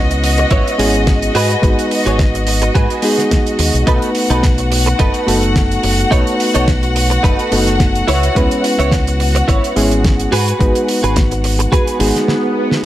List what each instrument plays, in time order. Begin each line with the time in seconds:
Already playing: fingered electric bass C#2, reed electric piano G#3 B3 C#4 E4 B4, string section F#4 D#5
0.10 muted clean electric guitar stroke, closed hi-hat
0.23 muted clean electric guitar stroke, open hi-hat
0.37 muted clean electric guitar stroke, closed hi-hat
0.50 fingered electric bass G#1, clean electric guitar E4 B4 C#5, kick, closed hi-hat
0.67 closed hi-hat
0.78 fingered electric bass G#1, reed electric piano G#3 B3 C#4 E4 G#4, open hi-hat
0.94 closed hi-hat
1.07 kick, snare, closed hi-hat
1.22 closed hi-hat
1.35 fingered electric bass G#2, clean electric guitar F#4 G#4 B4, open hi-hat
1.50 closed hi-hat
1.62 fingered electric bass G#1, reed electric piano G#3 B3 D#4 F#4 B4, kick, closed hi-hat
1.79 closed hi-hat
1.91 open hi-hat
2.06 fingered electric bass G#1, clean electric guitar F#4 G#4 C#5, closed hi-hat
2.19 kick, snare, closed hi-hat
2.34 muted clean electric guitar stroke, closed hi-hat
2.47 muted clean electric guitar stroke, open hi-hat
2.62 muted clean electric guitar stroke, closed hi-hat
2.75 fingered electric bass G#2, clean electric guitar F#4 G#4 B4, kick, closed hi-hat
2.90 closed hi-hat
3.02 reed electric piano G#3 B3 D#4 F#4 G#4, open hi-hat
3.18 snare, closed hi-hat
3.31 kick, snare, closed hi-hat
3.47 closed hi-hat
3.59 fingered electric bass D#2, muted clean electric guitar stroke, open hi-hat
3.74 fingered electric bass B1, closed hi-hat
3.86 fingered electric bass B1, reed electric piano A3 B3 D#4 F#4 B4, clean electric guitar D#4 A4 B4, string section F#4 F#5, kick, closed hi-hat
4.02 closed hi-hat
4.15 open hi-hat
4.30 fingered electric bass B1, clean electric guitar D#4 A4 B4, closed hi-hat
4.43 kick, snare, closed hi-hat
4.58 muted clean electric guitar stroke, closed hi-hat
4.71 muted clean electric guitar stroke, open hi-hat
4.86 muted clean electric guitar stroke, closed hi-hat
4.99 fingered electric bass F#1, clean electric guitar D#4 A4 B4, kick, closed hi-hat
5.14 closed hi-hat
5.27 fingered electric bass F#1, reed electric piano A3 B3 D#4 F#4 A4, open hi-hat
5.43 closed hi-hat
5.56 kick, snare, closed hi-hat
5.71 closed hi-hat
5.83 fingered electric bass F#1, muted clean electric guitar stroke, open hi-hat
5.99 closed hi-hat
6.11 fingered electric bass B1, reed electric piano A3 B3 D#4 F#4 B4, clean electric guitar D#4 A4 C#5, kick, closed hi-hat
6.27 closed hi-hat
6.40 open hi-hat
6.54 fingered electric bass B1, clean electric guitar D#4 A4 C#5, closed hi-hat
6.68 kick, snare, closed hi-hat
6.82 muted clean electric guitar stroke, closed hi-hat
6.95 muted clean electric guitar stroke, open hi-hat
7.10 muted clean electric guitar stroke, closed hi-hat
7.23 fingered electric bass F#1, clean electric guitar D#4 A4 B4, kick, closed hi-hat
7.39 closed hi-hat
7.52 fingered electric bass F#1, reed electric piano A3 B3 D#4 F#4 A4, open hi-hat
7.67 snare, closed hi-hat
7.80 kick, snare, closed hi-hat
7.95 closed hi-hat
8.08 fingered electric bass C#2, clean electric guitar E4 B4 C#5, open hi-hat
8.23 closed hi-hat
8.35 fingered electric bass C#2, reed electric piano G#3 B3 C#4 E4 B4, kick, closed hi-hat
8.51 closed hi-hat
8.64 open hi-hat
8.79 fingered electric bass C#2, clean electric guitar E4 B4 C#5, closed hi-hat
8.92 kick, snare, closed hi-hat
9.07 muted clean electric guitar stroke, closed hi-hat
9.20 muted clean electric guitar stroke, open hi-hat
9.35 muted clean electric guitar stroke, closed hi-hat
9.48 fingered electric bass G#1, clean electric guitar E4 B4 C#5, kick, closed hi-hat
9.64 closed hi-hat
9.76 fingered electric bass G#1, reed electric piano G#3 B3 C#4 E4 G#4, open hi-hat
9.91 closed hi-hat
10.04 kick, snare, closed hi-hat
10.19 closed hi-hat
10.32 fingered electric bass G#2, clean electric guitar F#4 G#4 B4, open hi-hat
10.48 closed hi-hat
10.59 fingered electric bass G#1, reed electric piano G#3 B3 D#4 F#4 B4, kick, closed hi-hat
10.75 closed hi-hat
10.89 open hi-hat
11.03 fingered electric bass G#1, clean electric guitar F#4 G#4 B4, closed hi-hat
11.16 kick, snare, closed hi-hat
11.31 muted clean electric guitar stroke, closed hi-hat
11.44 muted clean electric guitar stroke, open hi-hat
11.59 muted clean electric guitar stroke, closed hi-hat
11.72 clean electric guitar F#4 G#4 B4, kick, closed hi-hat, swell
11.87 closed hi-hat
11.99 fingered electric bass G#1, reed electric piano G#3 B3 D#4 F#4 G#4, open hi-hat
12.16 snare, closed hi-hat
12.28 snare
12.71 snare